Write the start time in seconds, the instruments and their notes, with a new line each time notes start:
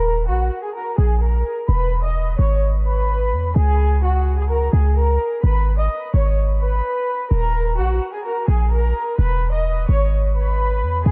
Already playing: 808-style bass D#1, violin section A#4 A#5
0.28 808-style bass A#1, violin section F#4 F#5
0.63 violin section G#4 G#5
0.75 violin section A#4 A#5
0.98 808-style bass A#1, violin section G#4 G#5
1.22 violin section A#4 A#5
1.68 808-style bass E1, violin section B4 B5
2.04 violin section D#5 D#6
2.39 808-style bass G#1, violin section C#5 C#6
2.86 violin section B4 B5
3.32 808-style bass E2
3.56 808-style bass C#2, violin section G#4 G#5
4.03 violin section F#4 F#5
4.38 violin section G#4 G#5
4.50 violin section A#4 A#5
4.73 808-style bass C#2, violin section G#4 G#5
4.96 violin section A#4 A#5
5.43 808-style bass G#1, violin section B4 B5
5.79 violin section D#5 D#6
6.14 808-style bass G#1, violin section C#5 C#6
6.61 violin section B4 B5
7.31 808-style bass D#1, violin section A#4 A#5
7.78 808-style bass A#1, violin section F#4 F#5
8.13 violin section G#4 G#5
8.25 violin section A#4 A#5
8.48 808-style bass A#1, violin section G#4 G#5
8.72 violin section A#4 A#5
9.18 808-style bass E1, violin section B4 B5
9.54 violin section D#5 D#6
9.89 808-style bass G#1, violin section C#5 C#6
10.35 violin section B4 B5
10.82 808-style bass E2
11.06 808-style bass C#2, violin section G#4 G#5